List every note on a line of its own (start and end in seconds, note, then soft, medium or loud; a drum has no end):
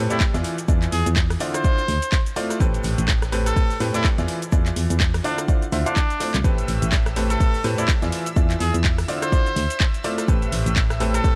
0.10 0.31 A2 medium
0.10 0.31 C4 medium
0.10 0.22 E4 medium
0.10 0.31 G4 medium
0.10 0.31 A4 medium
0.10 0.31 D5 medium
0.10 closed hi-hat medium
0.10 cabasa medium
0.20 kick loud
0.20 snare loud
0.20 clap loud
0.20 cabasa medium
0.20 shaker medium
0.34 0.42 E2 loud
0.34 0.55 E3 medium
0.34 0.55 E4 medium
0.34 0.55 F4 medium
0.34 0.55 G#4 medium
0.34 0.55 D5 medium
0.34 snare medium
0.34 closed hi-hat medium
0.34 cabasa soft
0.44 snare soft
0.44 open hi-hat loud
0.44 shaker medium
0.58 closed hi-hat medium
0.58 cabasa medium
0.68 0.87 E2 loud
0.68 1.38 E3 medium
0.68 1.38 E4 medium
0.68 1.38 F4 medium
0.68 1.38 G#4 medium
0.68 1.38 D5 medium
0.68 kick loud
0.68 cabasa medium
0.68 shaker medium
0.82 clap soft
0.82 closed hi-hat soft
0.82 closed hi-hat medium
0.82 cabasa soft
0.92 1.03 E2 medium
0.92 1.08 G#4 medium
0.92 open hi-hat loud
0.92 shaker medium
1.06 1.36 E2 medium
1.06 closed hi-hat medium
1.06 cabasa medium
1.16 kick loud
1.16 snare loud
1.16 clap loud
1.16 cabasa medium
1.16 shaker medium
1.30 cross-stick medium
1.30 open hi-hat medium
1.30 cabasa soft
1.40 1.61 D3 medium
1.40 1.61 E4 medium
1.40 1.61 F4 medium
1.40 1.61 C5 medium
1.40 1.61 D5 loud
1.40 open hi-hat loud
1.40 shaker medium
1.54 2.21 C5 loud
1.54 cross-stick medium
1.54 closed hi-hat medium
1.54 cabasa medium
1.64 1.79 D3 medium
1.64 1.79 E4 medium
1.64 1.79 F4 medium
1.64 1.79 C5 medium
1.64 1.79 D5 loud
1.64 kick loud
1.64 cabasa medium
1.64 shaker medium
1.78 closed hi-hat soft
1.78 cabasa soft
1.88 1.99 D2 loud
1.88 snare soft
1.88 open hi-hat loud
1.88 shaker medium
2.02 closed hi-hat medium
2.02 cabasa medium
2.12 kick loud
2.12 snare loud
2.12 clap loud
2.12 cabasa medium
2.12 shaker medium
2.26 closed hi-hat medium
2.26 cabasa soft
2.36 2.58 A3 loud
2.36 2.58 E4 medium
2.36 2.58 F4 medium
2.36 2.58 C5 medium
2.36 2.58 D5 loud
2.36 snare soft
2.36 open hi-hat loud
2.36 shaker medium
2.50 cross-stick medium
2.50 snare soft
2.50 closed hi-hat medium
2.50 cabasa medium
2.60 2.79 A1 loud
2.60 3.30 A2 loud
2.60 3.30 C4 medium
2.60 3.30 G4 medium
2.60 3.30 A4 medium
2.60 3.30 B4 loud
2.60 kick loud
2.60 cabasa medium
2.60 shaker medium
2.74 closed hi-hat medium
2.74 cabasa soft
2.83 2.94 A1 medium
2.83 snare soft
2.83 open hi-hat loud
2.83 shaker medium
2.98 3.52 A1 medium
2.98 closed hi-hat medium
2.98 cabasa medium
3.08 kick loud
3.08 snare loud
3.08 clap loud
3.08 cabasa medium
3.08 shaker medium
3.22 cross-stick medium
3.22 snare soft
3.22 closed hi-hat soft
3.22 cabasa soft
3.32 3.53 A2 medium
3.32 3.53 C4 medium
3.32 3.53 G4 medium
3.32 3.53 A4 medium
3.32 3.53 B4 loud
3.32 open hi-hat loud
3.32 shaker medium
3.46 3.80 A4 medium
3.46 cross-stick medium
3.46 snare soft
3.46 closed hi-hat medium
3.46 cabasa medium
3.56 3.71 A2 medium
3.56 3.71 C4 medium
3.56 3.71 G4 medium
3.56 3.71 B4 medium
3.56 kick loud
3.56 open hi-hat medium
3.56 cabasa medium
3.70 snare soft
3.70 closed hi-hat soft
3.70 cabasa soft
3.80 3.92 A2 loud
3.80 3.91 A2 medium
3.80 3.92 C4 medium
3.80 3.92 G4 medium
3.80 3.92 A4 medium
3.80 3.92 B4 loud
3.80 snare medium
3.80 open hi-hat loud
3.80 shaker medium
3.94 4.15 A2 medium
3.94 4.15 C4 medium
3.94 4.06 E4 loud
3.94 4.15 G4 medium
3.94 4.15 A4 medium
3.94 4.15 D5 medium
3.94 closed hi-hat medium
3.94 cabasa medium
4.04 kick loud
4.04 snare loud
4.04 clap loud
4.04 cabasa medium
4.04 shaker loud
4.18 4.26 E2 loud
4.18 4.39 E3 medium
4.18 4.39 E4 medium
4.18 4.39 F4 medium
4.18 4.39 G#4 medium
4.18 4.39 D5 loud
4.18 snare medium
4.18 closed hi-hat medium
4.18 cabasa soft
4.28 snare soft
4.28 open hi-hat loud
4.28 shaker medium
4.42 closed hi-hat medium
4.42 cabasa medium
4.52 4.71 E2 loud
4.52 5.22 E3 medium
4.52 5.22 E4 medium
4.52 5.22 F4 medium
4.52 5.22 G#4 medium
4.52 5.22 D5 medium
4.52 kick loud
4.52 cabasa medium
4.52 shaker medium
4.66 clap soft
4.66 closed hi-hat medium
4.66 closed hi-hat soft
4.66 cabasa soft
4.76 4.87 E2 medium
4.76 open hi-hat loud
4.76 shaker medium
4.90 5.20 E2 loud
4.90 closed hi-hat medium
4.90 cabasa medium
5.00 kick loud
5.00 snare loud
5.00 clap loud
5.00 cabasa medium
5.00 shaker medium
5.14 cross-stick medium
5.14 open hi-hat medium
5.14 cabasa soft
5.24 5.45 D3 medium
5.24 5.40 D4 medium
5.24 5.45 E4 medium
5.24 5.45 F4 medium
5.24 5.45 C5 medium
5.24 5.45 D5 medium
5.24 open hi-hat loud
5.24 shaker medium
5.38 cross-stick medium
5.38 closed hi-hat medium
5.38 cabasa medium
5.48 5.63 D3 medium
5.48 5.63 E4 medium
5.48 5.63 F4 medium
5.48 5.63 C5 medium
5.48 5.63 D5 loud
5.48 kick loud
5.48 cabasa medium
5.48 shaker medium
5.62 closed hi-hat soft
5.62 cabasa soft
5.72 5.83 D2 loud
5.72 5.84 D3 medium
5.72 5.84 E4 medium
5.72 5.84 F4 medium
5.72 5.84 C5 medium
5.72 5.84 E5 loud
5.72 snare soft
5.72 open hi-hat loud
5.72 shaker medium
5.86 5.98 D3 medium
5.86 6.34 D4 medium
5.86 5.98 E4 medium
5.86 5.98 F4 medium
5.86 5.98 C5 medium
5.86 5.98 F5 loud
5.86 closed hi-hat medium
5.86 cabasa medium
5.96 kick loud
5.96 clap loud
5.96 cabasa medium
5.96 shaker medium
6.10 closed hi-hat medium
6.10 cabasa soft
6.20 6.35 A3 medium
6.20 6.35 E4 medium
6.20 6.35 F4 medium
6.20 6.35 C5 medium
6.20 6.35 D5 medium
6.20 snare loud
6.20 open hi-hat loud
6.20 shaker medium
6.34 6.42 C2 loud
6.34 clap medium
6.34 closed hi-hat medium
6.34 cabasa medium
6.44 6.63 A1 loud
6.44 7.14 A2 loud
6.44 7.14 C4 medium
6.44 7.14 G4 medium
6.44 7.14 A4 medium
6.44 7.14 B4 loud
6.44 11.35 E5 medium
6.44 11.35 E6 medium
6.44 kick loud
6.44 cabasa medium
6.44 shaker loud
6.58 closed hi-hat medium
6.58 cabasa soft
6.68 6.79 A1 medium
6.68 snare soft
6.68 open hi-hat loud
6.68 shaker medium
6.82 7.36 A1 medium
6.82 closed hi-hat medium
6.82 cabasa medium
6.92 kick loud
6.92 snare loud
6.92 clap loud
6.92 cabasa medium
6.92 shaker loud
7.06 cross-stick medium
7.06 snare soft
7.06 closed hi-hat soft
7.06 cabasa soft
7.16 7.37 A2 loud
7.16 7.37 C4 medium
7.16 7.37 G4 medium
7.16 7.37 A4 medium
7.16 7.37 B4 loud
7.16 open hi-hat loud
7.16 shaker medium
7.30 7.64 A4 loud
7.30 cross-stick medium
7.30 snare medium
7.30 closed hi-hat medium
7.30 cabasa medium
7.40 7.55 A2 medium
7.40 7.55 C4 medium
7.40 7.55 G4 medium
7.40 7.55 B4 medium
7.40 kick loud
7.40 open hi-hat medium
7.40 cabasa medium
7.54 snare soft
7.54 closed hi-hat soft
7.54 cabasa soft
7.64 7.76 A2 loud
7.64 7.75 A2 medium
7.64 7.76 C4 medium
7.64 7.76 G4 medium
7.64 7.76 A4 medium
7.64 7.76 B4 loud
7.64 snare medium
7.64 open hi-hat loud
7.64 shaker medium
7.78 7.99 A2 medium
7.78 7.99 C4 medium
7.78 7.90 E4 medium
7.78 7.99 G4 medium
7.78 7.99 A4 medium
7.78 7.99 D5 loud
7.78 closed hi-hat medium
7.78 cabasa medium
7.88 kick loud
7.88 snare loud
7.88 clap loud
7.88 cabasa medium
7.88 shaker loud
8.02 8.10 E2 loud
8.02 8.23 E3 medium
8.02 8.23 E4 medium
8.02 8.23 F4 medium
8.02 8.23 G#4 medium
8.02 8.23 D5 medium
8.02 snare medium
8.02 closed hi-hat medium
8.02 cabasa soft
8.12 snare soft
8.12 open hi-hat loud
8.12 shaker medium
8.26 closed hi-hat medium
8.26 cabasa medium
8.36 8.55 E2 loud
8.36 9.06 E3 medium
8.36 9.06 E4 medium
8.36 9.06 F4 medium
8.36 9.06 G#4 medium
8.36 9.06 D5 medium
8.36 kick loud
8.36 cabasa medium
8.36 shaker medium
8.50 clap soft
8.50 closed hi-hat medium
8.50 closed hi-hat soft
8.50 cabasa soft
8.60 8.71 E2 medium
8.60 8.76 G#4 medium
8.60 open hi-hat loud
8.60 shaker medium
8.74 9.04 E2 medium
8.74 closed hi-hat medium
8.74 cabasa medium
8.84 kick loud
8.84 snare loud
8.84 clap loud
8.84 cabasa medium
8.84 shaker medium
8.98 cross-stick medium
8.98 open hi-hat medium
8.98 cabasa soft
9.08 9.29 D3 medium
9.08 9.29 E4 medium
9.08 9.29 F4 medium
9.08 9.29 C5 medium
9.08 9.29 D5 loud
9.08 open hi-hat loud
9.08 shaker medium
9.22 9.89 C5 loud
9.22 cross-stick medium
9.22 closed hi-hat medium
9.22 cabasa medium
9.32 9.47 D3 medium
9.32 9.47 E4 medium
9.32 9.47 F4 medium
9.32 9.47 C5 medium
9.32 9.47 D5 loud
9.32 kick loud
9.32 cabasa medium
9.32 shaker medium
9.46 closed hi-hat soft
9.46 cabasa soft
9.56 9.66 D2 loud
9.56 snare soft
9.56 open hi-hat loud
9.56 shaker medium
9.70 closed hi-hat medium
9.70 cabasa medium
9.80 kick loud
9.80 snare loud
9.80 clap loud
9.80 cabasa medium
9.80 shaker medium
9.94 closed hi-hat medium
9.94 cabasa soft
10.04 10.26 A3 loud
10.04 10.26 E4 medium
10.04 10.26 F4 medium
10.04 10.26 C5 medium
10.04 10.26 D5 loud
10.04 snare soft
10.04 open hi-hat loud
10.04 shaker medium
10.18 cross-stick medium
10.18 snare soft
10.18 closed hi-hat medium
10.18 cabasa medium
10.28 10.47 A1 loud
10.28 10.98 A2 loud
10.28 10.98 C4 medium
10.28 10.98 G4 medium
10.28 10.98 A4 medium
10.28 10.98 B4 loud
10.28 kick loud
10.28 cabasa medium
10.28 shaker medium
10.42 closed hi-hat soft
10.42 cabasa soft
10.52 10.63 A1 medium
10.52 snare soft
10.52 open hi-hat loud
10.52 shaker medium
10.66 11.20 A1 medium
10.66 closed hi-hat medium
10.66 cabasa medium
10.76 kick loud
10.76 snare loud
10.76 clap loud
10.76 cabasa medium
10.76 shaker medium
10.90 cross-stick medium
10.90 snare soft
10.90 closed hi-hat soft
10.90 cabasa soft
11.00 11.21 A2 loud
11.00 11.21 C4 medium
11.00 11.21 G4 medium
11.00 11.21 A4 medium
11.00 11.21 B4 loud
11.00 open hi-hat loud
11.00 shaker medium
11.13 11.35 A4 medium
11.13 cross-stick medium
11.13 snare soft
11.13 closed hi-hat medium
11.13 cabasa medium
11.24 11.35 A2 medium
11.24 11.35 C4 medium
11.24 11.35 G4 medium
11.24 11.35 A4 medium
11.24 11.35 B4 loud
11.24 kick loud
11.24 open hi-hat medium
11.24 cabasa medium